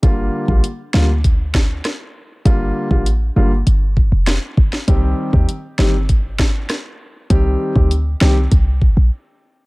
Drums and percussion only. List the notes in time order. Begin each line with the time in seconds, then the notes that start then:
0.03 kick, closed hi-hat
0.48 kick
0.64 closed hi-hat
0.94 snare
1.24 kick, closed hi-hat
1.54 kick, snare
1.85 cross-stick, snare, closed hi-hat
2.45 kick, closed hi-hat
2.91 kick
3.06 closed hi-hat
3.67 closed hi-hat
3.97 kick
4.27 cross-stick, snare, closed hi-hat
4.57 kick
4.73 snare
4.88 kick, closed hi-hat
5.33 kick
5.49 closed hi-hat
5.79 snare
6.09 kick, closed hi-hat
6.39 kick, snare
6.70 cross-stick, snare, closed hi-hat
7.30 kick, closed hi-hat
7.76 kick
7.91 closed hi-hat
8.21 snare
8.52 kick, closed hi-hat
8.82 kick